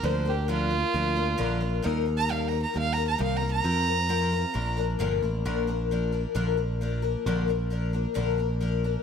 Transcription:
<<
  \new Staff \with { instrumentName = "Fiddle" } { \time 4/4 \key bes \mixolydian \tempo 4 = 133 c''8 g'8 f'2. | \tuplet 3/2 { r4 bes''8 f''8 bes''8 bes''8 f''8 bes''8 bes''8 f''8 bes''8 bes''8~ } | bes''2~ bes''8 r4. | r1 |
r1 | }
  \new Staff \with { instrumentName = "Twelve-string acoustic guitar" } { \time 4/4 \key bes \mixolydian <d f bes d' bes'>8 <bes d' bes'>8 <d f bes d' bes'>8 <bes d' bes'>8 <f bes d' bes'>8 <bes d' bes'>8 <d f bes d' bes'>8 <bes d' bes'>8 | <ees g bes ees' bes'>8 <bes ees' bes'>8 <ees g bes ees' bes'>8 <bes ees' bes'>8 <g bes ees' bes'>8 <bes ees' bes'>8 <ees g bes ees' bes'>8 <bes ees' bes'>8 | <f c' f' bes'>8 <c' f' bes'>8 <f c' f' bes'>8 <c' f' bes'>8 <f bes d' bes'>8 <f bes d' bes'>8 <bes, d f bes d' bes'>8 <f bes d' bes'>8 | <bes, d f bes d' bes'>8 <f bes d' bes'>8 <f bes d' bes'>8 <f bes d' bes'>8 <bes, d f bes d' bes'>8 <f bes d' bes'>8 <f bes d' bes'>8 <f bes d' bes'>8 |
<bes, d f bes d' bes'>8 <f bes d' bes'>8 <f bes d' bes'>8 <f bes d' bes'>8 <bes, d f bes d' bes'>8 <f bes d' bes'>8 <f bes d' bes'>8 <f bes d' bes'>8 | }
  \new Staff \with { instrumentName = "Picked electric bass" } { \clef bass \time 4/4 \key bes \mixolydian d,2 d,4 bes,,4 | ees,2 ees,4 c,4 | f,2 bes,,4 g,,8 a,,8 | bes,,2 bes,,2 |
bes,,2 bes,,2 | }
>>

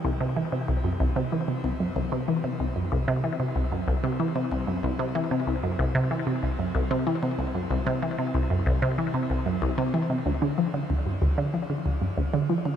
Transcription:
\new Staff \with { instrumentName = "Synth arpeggio sound" } { \clef bass \time 4/4 \key c \lydian \tempo 4 = 94 c,16 c16 e16 c16 c,16 fis,16 c,16 c16 e16 c16 c,16 fis,16 c,16 c16 e16 c16 | c,16 fis,16 c,16 c16 e16 c16 c,16 fis,16 c,16 c16 e16 c16 c,16 fis,16 c,16 c16 | e16 c16 c,16 fis,16 c,16 c16 e16 c16 c,16 fis,16 c,16 c16 e16 c16 c,16 fis,16 | c,16 c16 e16 c16 c,16 fis,16 c,16 c16 e16 c16 c,16 fis,16 c,16 c16 e16 c16 |
\key d \minor d,16 d16 f16 d16 d,16 g,16 d,16 d16 f16 d16 d,16 g,16 d,16 d16 f16 d16 | }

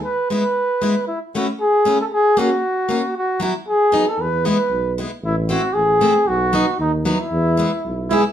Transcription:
<<
  \new Staff \with { instrumentName = "Flugelhorn" } { \time 2/4 \key e \major \tempo 4 = 115 b'8 b'4. | e'8 fis'8 gis'8. a'16 | gis'8 fis'4. | fis'8 fis'8 gis'8. a'16 |
b'8 b'4 r8 | e'8 fis'8 gis'4 | fis'4 dis'8 e'8~ | e'4. gis'8 | }
  \new Staff \with { instrumentName = "Trumpet" } { \time 2/4 \key e \major r2 | r2 | r2 | r2 |
r2 | r2 | r2 | r4. e'8 | }
  \new Staff \with { instrumentName = "Steel-string acoustic guitar" } { \time 2/4 \key e \major r8 <gis b e'>8 r8 <gis b e'>8 | r8 <a cis' e'>8 r8 <a cis' e'>8 | r8 <ais cis' fis'>8 r8 <ais cis' fis'>8 | r8 <fis b e'>8 r8 <fis b dis'>8 |
r8 <gis b e'>8 r8 <gis b e'>8 | r8 <a c' e'>8 r8 <a c' e'>8 | r8 <fis b dis'>8 r8 <fis b dis'>8 | r8 <gis b e'>8 r8 <gis b e'>8 | }
  \new Staff \with { instrumentName = "Tuba" } { \clef bass \time 2/4 \key e \major r2 | r2 | r2 | r2 |
e,4 b,,4 | a,,4 a,,4 | b,,4 dis,4 | e,4 b,,4 | }
>>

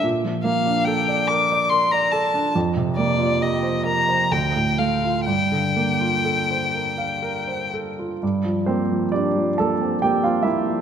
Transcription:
<<
  \new Staff \with { instrumentName = "Violin" } { \time 3/4 \key g \dorian \tempo 4 = 68 r8 f''8 g''8 d'''8 c'''16 bes''16 a''8 | r8 d''8 ees''8 bes''8 g''8 f''8 | g''2~ g''8 r8 | r2. | }
  \new Staff \with { instrumentName = "Grand piano" } { \time 3/4 \key g \dorian << { r2. | r2. | r2. | r8 <c' c''>8 <d' d''>8 <a' a''>8 <g' g''>16 <f' f''>16 <e' e''>8 | } \\ { bes,16 f16 bes16 d'16 a'16 d''16 bes'16 d''16 bes'16 d''16 a'16 d'16 | f,16 c16 bes16 f'16 g'16 c''16 bes'16 c''16 d,16 a,16 a16 f'16 | g,16 d16 bes16 f'16 a'16 c''16 bes'16 f''16 bes'16 c''16 a'16 f'16 | g,16 f16 bes16 f16 g'16 f16 bes16 c'16 bes16 c'16 bes16 f16 | } >> }
>>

